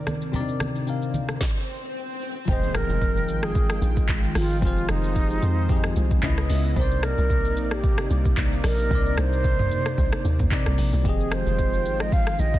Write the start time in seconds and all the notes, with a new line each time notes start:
Already playing: C3 D#3 C4 D#4 A#4 D5
0.07 cross-stick, high conga, shaker
0.22 shaker
0.32 C3 C4 D4 A#4 D5, swell, low conga, shaker
0.41 D#4
0.48 shaker
0.60 cross-stick, high conga, shaker
0.75 shaker
0.86 C3 C4 D#4 A#4 F5, shaker
1.02 shaker
1.14 high conga, shaker
1.29 cross-stick, shaker
1.41 kick, snare
2.45 F1 D#3 F3 G#3 C4 F4 C5 G5, kick, impact, shaker
2.51 G#4 D#5
2.63 shaker
2.75 A#4, cross-stick, shaker
2.89 F1, shaker
3.02 kick, shaker
3.16 shaker
3.28 G#1, shaker
3.43 G#4, cross-stick
3.55 kick, shaker
3.70 cross-stick, shaker
3.82 A#1, shaker
3.97 kick, shaker
4.09 kick, clap, shaker
4.23 shaker
4.35 G#1 F4, cross-stick, open hi-hat, shaker
4.50 shaker
4.59 F1 F3 C4 F4 G4 C5, kick, shaker
4.65 G#4 C5
4.77 shaker
4.89 F1 D#4, cross-stick, shaker
5.04 shaker
5.16 kick, shaker
5.30 shaker
5.42 F2, shaker
5.68 F3 C4 G4 G#4 D#5, kick, shaker
5.84 cross-stick, shaker
5.96 C2, shaker
6.11 kick, shaker
6.22 C#2 C#3 B3 C#4 E4 B4 D#5, kick, clap, shaker
6.37 cross-stick, shaker
6.50 C#2, open hi-hat, shaker
6.64 shaker
6.74 C2 C3 A#3 C4 D4 D#4 C5 D5, kick, shaker
6.79 A#4 D5
6.84 D#4
6.91 shaker
7.03 A#4, cross-stick, shaker
7.18 C2, shaker
7.30 kick, shaker
7.45 shaker
7.57 A#1, shaker
7.65 A#4
7.71 G4, cross-stick
7.83 kick, shaker
7.98 cross-stick, shaker
8.10 C2, shaker
8.25 kick, shaker
8.37 kick, clap, shaker
8.52 shaker
8.64 A#1 A#4, cross-stick, open hi-hat, shaker
8.79 shaker
8.88 C2 C3 C4 D4, kick, shaker
8.93 A#4 D5
8.98 D#4
9.06 shaker
9.18 C2 C5, cross-stick, shaker
9.32 shaker
9.44 kick, shaker
9.59 mid tom, shaker
9.71 C3, shaker
9.86 cross-stick, shaker
9.98 C2, kick, shaker
10.13 cross-stick, shaker
10.25 D#2, shaker
10.39 D#2, kick, mid tom, shaker
10.50 C3 C4 D#4 A#4 D5, kick, clap, shaker
10.66 C2, cross-stick, shaker
10.78 A#1, open hi-hat, shaker
10.93 C2, shaker
11.02 F1 D#3 F3 G#3 C4 F4 G4 G#4 G5, kick, shaker
11.08 G#4 D#5
11.20 shaker
11.32 C5, cross-stick, shaker
11.46 F1, shaker
11.58 kick, shaker
11.74 shaker
11.85 G#1, shaker
12.00 D#5, cross-stick
12.12 F5, kick, shaker
12.27 cross-stick, shaker
12.39 A#1 D#5, shaker
12.54 kick, shaker